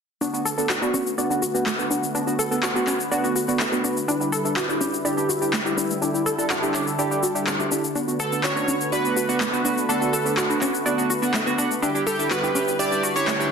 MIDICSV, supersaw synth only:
0, 0, Header, 1, 2, 480
1, 0, Start_track
1, 0, Key_signature, 2, "major"
1, 0, Tempo, 483871
1, 209, Time_signature, 4, 2, 24, 8
1, 13409, End_track
2, 0, Start_track
2, 0, Title_t, "Supersaw synth"
2, 0, Program_c, 0, 81
2, 208, Note_on_c, 0, 66, 68
2, 209, Note_on_c, 0, 50, 76
2, 210, Note_on_c, 0, 57, 68
2, 210, Note_on_c, 0, 71, 83
2, 4011, Note_off_c, 0, 57, 0
2, 4011, Note_off_c, 0, 66, 0
2, 4049, Note_on_c, 0, 55, 72
2, 4049, Note_on_c, 0, 64, 69
2, 5930, Note_off_c, 0, 71, 0
2, 5968, Note_on_c, 0, 69, 88
2, 7851, Note_off_c, 0, 55, 0
2, 7851, Note_off_c, 0, 64, 0
2, 7870, Note_off_c, 0, 69, 0
2, 7890, Note_on_c, 0, 71, 84
2, 7891, Note_on_c, 0, 57, 74
2, 7891, Note_on_c, 0, 66, 69
2, 11690, Note_off_c, 0, 50, 0
2, 11692, Note_off_c, 0, 57, 0
2, 11692, Note_off_c, 0, 66, 0
2, 11692, Note_off_c, 0, 71, 0
2, 11730, Note_on_c, 0, 55, 75
2, 11730, Note_on_c, 0, 64, 74
2, 11730, Note_on_c, 0, 71, 84
2, 11731, Note_on_c, 0, 50, 77
2, 13409, Note_off_c, 0, 50, 0
2, 13409, Note_off_c, 0, 55, 0
2, 13409, Note_off_c, 0, 64, 0
2, 13409, Note_off_c, 0, 71, 0
2, 13409, End_track
0, 0, End_of_file